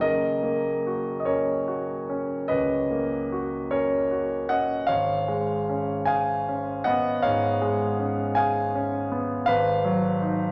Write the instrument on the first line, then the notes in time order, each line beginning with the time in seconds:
grand piano
0.00 F#1 A#4 D#5
0.43 A#3
0.87 F#4
1.20 D#5
1.25 C#4 A#4 C#5
1.68 F#4
2.09 C#4
2.48 C#2 B4 D#5
2.91 A#3
3.32 F#4
3.71 C#4 A#4 C#5
4.11 F#4
4.49 C#4 D#5 F#5
4.87 G#1 C#5 F5
5.28 G#3
5.69 C#4
6.05 G#4 F5 G#5
6.49 C#4
6.84 B3 D#5 F#5
7.22 G#2 C#5 F5
7.61 G#3
7.99 C#4
8.35 G#4 F5 G#5
8.75 C#4
9.12 B3
9.46 G#1 B4 F5
9.85 F#3
10.22 D#4